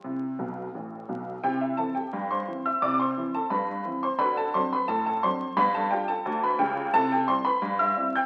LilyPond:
<<
  \new Staff \with { instrumentName = "Honky-tonk piano" } { \time 2/4 \key c \major \tempo 4 = 87 <c'' c'''>4 r4 | <g' g''>16 <e' e''>16 <a' a''>16 <g' g''>8 <c'' c'''>8 <e'' e'''>16 | <d'' d'''>16 <c'' c'''>8 <a' a''>16 <b' b''>8. <c'' c'''>16 | <b' b''>16 <a' a''>16 <c'' c'''>16 <b' b''>16 <a' a''>16 <a' a''>16 <c'' c'''>8 |
<b' b''>16 <a' a''>16 <g' g''>16 <a' a''>8 <b' b''>16 <g' g''>8 | <a' a''>16 <g' g''>16 <c'' c'''>16 <b' b''>8 <e'' e'''>8 <g'' g'''>16 | }
  \new Staff \with { instrumentName = "Honky-tonk piano" } { \clef bass \time 2/4 \key c \major <c e'>8 <b,, b,>8 <a,, a,>8 <b,, b,>8 | <c e'>8 <e c' e'>8 g,8 <e c' e'>8 | <c e'>8 <e c' e'>8 g,8 <e c' e'>8 | <d fis'>8 <fis c' d'>8 a,8 <fis c' d'>8 |
<g, b>8 <g d' f'>8 d,8 <des, des>8 | <c e'>8 <g c' e'>8 g,8 <g c' e'>8 | }
>>